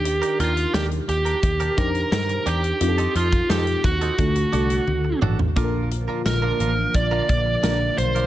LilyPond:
<<
  \new Staff \with { instrumentName = "Lead electric guitar" } { \time 4/4 \key bes \major \tempo 4 = 87 g'8 f'8 g'8 g'4 bes'8 bes'8 g'8~ | g'8 f'8 g'8 fis'2 r8 | r4 bes'4 d''8 d''4 c''8 | }
  \new Staff \with { instrumentName = "Clean electric guitar" } { \time 4/4 \key bes \major r16 <d' g' bes'>16 <d' g' bes'>16 r16 <d' g' bes'>16 r8 <d' g' bes'>16 r16 <d' g' bes'>16 <d' g' bes'>16 r8. <d' g' bes'>16 r16 | r16 <c' ees' a'>16 <c' ees' a'>16 r16 <c' ees' a'>16 r8 <c' ees' a'>16 r8 <d' fis' a'>16 <d' fis' a'>16 r8 <d' fis' a'>16 r16 | <d' f' bes'>8 r16 <d' f' bes'>16 r16 <d' f' bes'>16 <d' f' bes'>16 r8 <d' f' bes'>16 r8 <d' f' bes'>16 r8 <d' f' bes'>16 | }
  \new Staff \with { instrumentName = "FM electric piano" } { \time 4/4 \key bes \major <d' ees' g' bes'>4 r4. <d' ees' g' c''>4 r8 | <c' ees' f' g' a'>4. r8 <a d' fis' a'>8 <a d' fis' a'>4 r8 | <bes d' f' a' bes'>4. r4. <bes d' f' bes'>8. r16 | }
  \new Staff \with { instrumentName = "FM electric piano" } { \clef bass \time 4/4 \key bes \major ees4 r2. | r2 d4. r8 | bes,4. r2 r8 | }
  \new Staff \with { instrumentName = "Analog synth pad" } { \clef bass \time 4/4 \key bes \major r1 | r1 | <d f bes f'>1 | }
  \new Staff \with { instrumentName = "Picked electric bass" } { \clef bass \time 4/4 \key bes \major ees,8 ees,8 ees,8 ees,8 ees,8 f,8 g,8 e,8 | f,8 f,8 f,8 ees,8 d,8 c,8 d,8 a,,8 | bes,,4 bes,,8 a,,8 bes,,8 bes,,8 bes,,8 b,,8 | }
  \new DrumStaff \with { instrumentName = "Drums" } \drummode { \time 4/4 hh16 hh16 hh16 hh16 sn16 hh16 hh16 hh16 <hh bd>16 hh16 <hh bd>16 hh16 sn16 hh16 hh16 hh16 | hh16 hh16 hh16 <hh bd>16 sn16 hh16 <hh bd>16 hh16 <hh bd>16 hh16 hh16 hh16 tommh8 toml16 tomfh16 | <hh bd>8 hh8 <hh sn>8 hh8 <hh bd>8 <hh bd>8 <hh sn>8 hh16 hh16 | }
>>